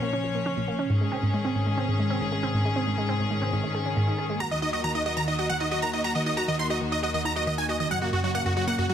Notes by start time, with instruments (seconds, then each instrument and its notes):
Already playing: string section A#2 F3 C#4 C#5
0.02 synth pluck A#3, closed hi-hat
0.13 synth pluck C#4, closed hi-hat
0.24 synth pluck A#2
0.35 synth pluck A#3, closed hi-hat
0.46 synth pluck C#4, closed hi-hat
0.57 synth pluck A#2, closed hi-hat
0.68 synth pluck A#3, closed hi-hat
0.79 synth pluck C#4, closed hi-hat
0.90 synth pluck G#2, string section G#2 D#3 G#4, closed hi-hat
1.01 synth pluck G#3, closed hi-hat
1.12 synth pluck C4, closed hi-hat
1.23 synth pluck G#2, closed hi-hat
1.34 synth pluck G#3, closed hi-hat
1.45 synth pluck C4, closed hi-hat
1.55 synth pluck G#2, closed hi-hat
1.66 synth pluck G#3, closed hi-hat
1.77 synth pluck C4, closed hi-hat
1.88 synth pluck G#2, closed hi-hat
1.99 synth pluck G#3
2.10 synth pluck C4, closed hi-hat
2.21 synth pluck G#2, closed hi-hat
2.32 synth pluck G#3, closed hi-hat
2.43 synth pluck C4, closed hi-hat
2.54 synth pluck G#2, closed hi-hat
2.65 synth pluck G#3, closed hi-hat
2.76 synth pluck C4, closed hi-hat
2.87 synth pluck G#2, closed hi-hat
2.98 synth pluck G#3, closed hi-hat
3.09 synth pluck C4, closed hi-hat
3.20 synth pluck G#2, closed hi-hat
3.31 synth pluck G#3, closed hi-hat
3.42 synth pluck C4, closed hi-hat
3.53 synth pluck G#2, closed hi-hat
3.64 synth pluck G#3, closed hi-hat
3.75 synth pluck G#4, closed hi-hat
3.86 synth pluck C#4, closed hi-hat
3.97 synth pluck G#2, closed hi-hat
4.07 synth pluck D#4, closed hi-hat
4.18 synth pluck G#4, closed hi-hat
4.29 synth pluck G#3, closed hi-hat
4.40 string section D#2 A#3 F#4, synth pluck F#4 A#5, supersaw synth A#5, closed hi-hat
4.51 synth pluck D#3 D#5, supersaw synth D#5, closed hi-hat
4.62 synth pluck D#4 D#5, supersaw synth D#5, closed hi-hat
4.73 synth pluck F#4 D#5, supersaw synth D#5, closed hi-hat
4.84 synth pluck D#3 A#5, supersaw synth A#5, closed hi-hat
4.95 synth pluck D#4 D#5, supersaw synth D#5, closed hi-hat
5.06 synth pluck F#4 D#5, supersaw synth D#5, closed hi-hat
5.17 synth pluck D#3 A#5, supersaw synth A#5, closed hi-hat
5.28 synth pluck D#4 D#5, supersaw synth D#5, closed hi-hat
5.39 synth pluck F#4 D#5, supersaw synth D#5
5.49 synth pluck D#3 F#5, supersaw synth F#5
5.60 synth pluck D#4 D#5, supersaw synth D#5, closed hi-hat
5.71 synth pluck F#4 D#5, supersaw synth D#5, closed hi-hat
5.82 synth pluck D#3 A#5, supersaw synth A#5
5.93 synth pluck D#4 D#5, supersaw synth D#5, closed hi-hat
6.04 synth pluck F#4 A#5, supersaw synth A#5
6.15 synth pluck D#3 D#5, supersaw synth D#5, closed hi-hat
6.26 synth pluck D#4 D#5, supersaw synth D#5, closed hi-hat
6.37 synth pluck F#4 A#5, supersaw synth A#5, closed hi-hat
6.48 synth pluck D#3 D#5, supersaw synth D#5, closed hi-hat
6.59 synth pluck D#4 C6, supersaw synth C6, closed hi-hat
6.70 synth pluck F#4 D#5, supersaw synth D#5, closed hi-hat
6.81 synth pluck D#3, closed hi-hat
6.92 synth pluck D#4 D#5, supersaw synth D#5, closed hi-hat
7.03 synth pluck F#4 D#5, supersaw synth D#5, closed hi-hat
7.14 synth pluck D#3 D#5, supersaw synth D#5, closed hi-hat
7.25 synth pluck D#4 A#5, supersaw synth A#5
7.36 synth pluck F#4 D#5, supersaw synth D#5, closed hi-hat
7.47 synth pluck D#3 D#5, supersaw synth D#5, closed hi-hat
7.58 synth pluck D#4 G#5, supersaw synth G#5, closed hi-hat
7.69 synth pluck F#4 D#5, supersaw synth D#5, closed hi-hat
7.80 synth pluck D#3 D#5, supersaw synth D#5, closed hi-hat
7.91 string section F#2 C#3 F#4, synth pluck F#3 F#5, supersaw synth F#5, closed hi-hat
8.02 synth pluck A#3 F#4, supersaw synth F#4, closed hi-hat
8.13 synth pluck F#2 F#4, supersaw synth F#4, closed hi-hat
8.24 synth pluck F#3 F#4, supersaw synth F#4, closed hi-hat
8.35 synth pluck A#3 F#5, supersaw synth F#5, closed hi-hat
8.46 synth pluck F#2 F#4, supersaw synth F#4, closed hi-hat
8.56 synth pluck F#3 F#4, supersaw synth F#4, closed hi-hat
8.67 synth pluck A#3 F#5, supersaw synth F#5, closed hi-hat
8.78 synth pluck F#2 F#4, supersaw synth F#4, closed hi-hat
8.89 synth pluck F#3 F#4, supersaw synth F#4, closed hi-hat